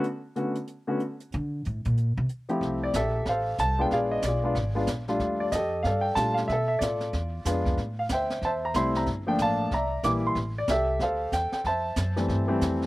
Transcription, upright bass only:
1.34 1.63 D3 loud
1.66 1.85 A2 medium
1.86 2.15 A#2 medium
2.17 2.25 C3 loud
2.61 2.92 C2 medium
2.94 3.25 A#1 medium
3.26 3.57 A1 medium
3.58 3.90 C2 medium
3.91 4.22 A#1 medium
4.22 4.54 B1 medium
4.55 4.86 G#1 medium
4.88 5.19 A#1 medium
5.20 5.51 D#2 medium
5.52 5.83 F2 medium
5.84 6.15 G2 medium
6.16 6.47 A#2 medium
6.49 6.80 B2 medium
6.81 7.12 A2 medium
7.13 7.45 E2 medium
7.45 7.77 F2 medium
7.77 8.09 A2 medium
8.09 8.41 D2 medium
8.42 8.73 E2 medium
8.74 9.05 C2 medium
9.06 9.38 G1 medium
9.39 9.70 A1 medium
9.71 10.03 C2 medium
10.03 10.35 A#1 medium
10.35 10.67 A1 medium
10.68 10.99 C2 medium
10.99 11.31 D2 medium
11.32 11.51 E2 medium
11.53 muted upright bass stroke soft
11.64 11.96 F2 medium
11.96 12.28 F#2 medium
12.28 12.60 G2 medium
12.61 12.86 F2 medium

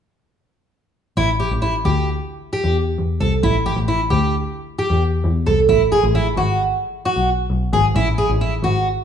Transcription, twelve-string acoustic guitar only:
1.17 1.29 E4 medium
1.40 1.51 G4 medium
1.62 1.74 E4 medium
1.85 2.09 G4 medium
2.53 2.76 G4 medium
3.20 3.32 A4 medium
3.43 3.55 E4 medium
3.66 3.78 G4 medium
3.88 4.00 E4 medium
4.10 4.34 G4 medium
4.79 5.02 G4 medium
5.46 5.58 A4 medium
5.69 5.81 E4 medium
5.92 6.04 G#4 medium
6.15 6.27 E4 medium
6.37 6.61 F#4 medium
7.05 7.29 F#4 medium
7.73 7.85 G#4 medium
7.96 8.07 E4 medium
8.18 8.30 G#4 medium
8.41 8.53 E4 medium
8.64 8.87 F#4 medium

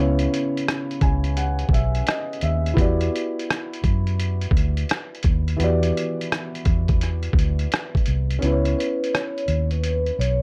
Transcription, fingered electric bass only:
0.00 0.26 C#2 loud
1.02 1.63 C#2 medium
1.69 2.01 B1 medium
2.43 2.73 D#2 medium
2.77 3.08 E2 loud
3.84 4.45 F#2 medium
4.51 4.83 D2 medium
5.25 5.55 D#2 medium
5.60 5.90 E2 medium
6.66 7.28 E2 medium
7.34 7.65 D2 loud
8.08 8.38 C2 medium
8.43 8.73 C#2 loud
9.48 10.10 D#2 medium
10.19 10.42 B1 medium

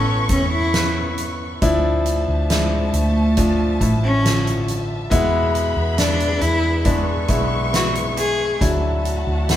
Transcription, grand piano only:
0.00 1.61 A2 medium
0.00 1.64 E3 medium
0.00 0.29 B3 medium
0.00 0.29 C#4 medium
0.00 0.30 A4 loud
0.29 0.71 B3 medium
0.29 0.71 C#4 medium
0.29 0.72 A4 medium
0.73 1.57 B3 medium
0.73 1.58 C#4 medium
0.73 1.58 B4 medium
1.61 2.90 A2 medium
1.61 2.45 F3 medium
1.61 2.46 D4 loud
1.61 2.46 E4 loud
2.50 3.33 F3 medium
2.50 3.33 D4 medium
2.50 3.33 E4 medium
3.37 3.79 F3 medium
3.37 3.79 D4 medium
3.37 3.79 F4 medium
3.80 4.22 F3 medium
3.80 4.22 D4 medium
3.80 4.22 E4 medium
4.24 5.07 D3 medium
4.24 5.07 F3 medium
4.24 5.07 F4 medium
5.10 6.38 B2 medium
5.10 5.94 G#3 loud
5.10 5.94 B3 loud
5.10 5.94 E4 loud
5.98 6.81 G#3 medium
5.98 6.81 B3 medium
5.98 6.81 D4 medium
6.85 7.27 G#3 medium
6.85 7.27 B3 medium
6.85 7.27 D4 loud
7.29 7.71 G#3 medium
7.29 7.71 B3 medium
7.29 7.71 E4 medium
7.72 8.56 G#3 medium
7.72 8.56 B3 medium
7.72 8.57 E4 medium
8.60 9.57 A2 medium
8.60 9.44 F#3 medium
8.60 9.45 D4 medium
8.60 9.45 E4 medium
9.48 9.57 D3 medium
9.48 9.57 F#3 medium
9.48 9.57 E4 medium

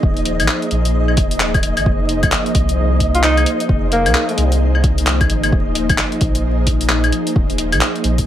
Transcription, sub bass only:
0.03 0.41 D#1 loud
0.40 0.48 A#1 loud
0.71 1.19 A#1 medium
1.17 1.79 D#1 loud
1.77 1.85 A#1 medium
1.86 2.24 F1 loud
2.23 2.31 C2 loud
2.55 3.45 C2 medium
3.69 4.07 F1 loud
4.06 4.14 C2 loud
4.38 5.31 C2 medium
5.30 5.51 G#1 loud
5.52 5.91 D#1 loud
5.89 5.97 A#1 loud
6.21 7.12 A#1 medium
7.36 7.74 D#1 loud
7.72 7.81 A#1 loud
8.04 8.27 A#1 medium

